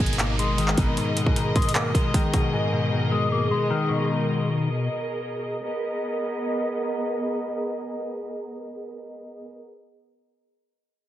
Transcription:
Already playing: clean electric guitar G#2 B2 D#3, string section B2 G#4 A#4 D#5, downlifter
0.00 808-style bass G#1, clean electric guitar G#3
0.06 closed hi-hat
0.13 closed hi-hat
0.19 clean electric guitar A#3, clap, closed hi-hat
0.39 clean electric guitar G#3, closed hi-hat
0.58 clean electric guitar D#3, closed hi-hat
0.68 clap
0.78 808-style bass G#1, clean electric guitar B2, kick, closed hi-hat
0.97 clean electric guitar G#2, closed hi-hat
1.17 clean electric guitar B2, closed hi-hat
1.26 kick
1.36 clean electric guitar D#3, closed hi-hat
1.56 clean electric guitar G#3, kick, closed hi-hat
1.62 closed hi-hat
1.69 closed hi-hat
1.75 clean electric guitar A#3, clap, closed hi-hat
1.95 clean electric guitar G#3, kick, closed hi-hat
2.14 clean electric guitar D#3, kick, closed hi-hat
2.34 clean electric guitar B2, kick, closed hi-hat
2.53 clean electric guitar G#2
2.72 clean electric guitar B2
2.92 clean electric guitar D#3
3.12 clean electric guitar G#3
3.32 clean electric guitar A#3
3.51 clean electric guitar G#3
3.70 clean electric guitar D#3
3.89 clean electric guitar B2
5.65 string section B3 G#4 A#4 D#5

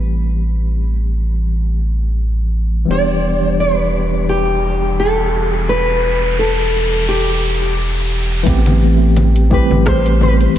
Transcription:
Already playing: analog synth bass A1, tine electric piano E3 G3 A3 C4 G4
2.85 analog synth bass E1, tine electric piano E3 G3 B3, riser
2.90 tine electric piano D4 G4, nylon-string guitar D5
3.44 nylon-string guitar C5
3.60 nylon-string guitar B4
4.29 nylon-string guitar G4
5.00 nylon-string guitar A4
5.69 nylon-string guitar B4
6.39 nylon-string guitar A4
7.08 nylon-string guitar G4
8.43 analog synth bass A1, tine electric piano E3 A3 B3, kick, closed hi-hat, shaker
8.48 tine electric piano C4 G4
8.66 closed hi-hat, low conga
8.82 shaker
9.01 shaker
9.16 closed hi-hat, low conga, shaker
9.36 closed hi-hat
9.50 tine electric piano E3 G3 A3 C4 G4, nylon-string guitar B4, kick, shaker
9.70 analog synth bass A1, low conga, shaker
9.86 nylon-string guitar C5, kick, cross-stick, closed hi-hat, shaker
10.06 closed hi-hat
10.21 nylon-string guitar B4, low conga, shaker
10.41 closed hi-hat, shaker

